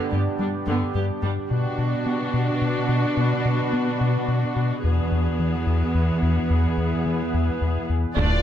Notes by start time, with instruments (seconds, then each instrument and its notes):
Already playing: viola section D3 B3, ambient pad B3 D4 G4 D5
0.11 cello section G2, analog synth bass G2, viola section B3 G4
0.39 cello section G2, analog synth bass G3, viola section G3 D4
0.67 cello section G2, analog synth bass G2, viola section D3 B3
0.95 cello section G2, analog synth bass G2, viola section B3 G4
1.22 cello section G2, analog synth bass G2, viola section G3 D4
1.50 cello section B2, analog synth bass B2, ambient pad B3 D4 F#4 B4, viola section D4 F#4
1.78 analog synth bass B2
2.06 analog synth bass B3
2.34 analog synth bass B2
2.62 analog synth bass B2
2.89 analog synth bass B2
3.17 analog synth bass B2
3.46 analog synth bass B2
3.73 analog synth bass B3
4.01 analog synth bass B2
4.28 analog synth bass B2
4.56 analog synth bass B2
4.83 cello section E2, analog synth bass E2, viola section B3 G#4, ambient pad B3 E4 G#4 B4
5.12 analog synth bass E2
5.39 analog synth bass E3
5.66 analog synth bass E2
5.95 analog synth bass E2
6.22 analog synth bass E2
6.50 analog synth bass E2
6.77 analog synth bass E2
7.06 analog synth bass E3
7.34 analog synth bass E2
7.62 analog synth bass E2
7.90 analog synth bass E2
8.16 detuned saw bass D1, analog synth bass D2, double bass section D2, cello section D3, viola section A3 D4, ambient pad A3 D4 F4 D5, violin section F4 D5, taiko, sub drop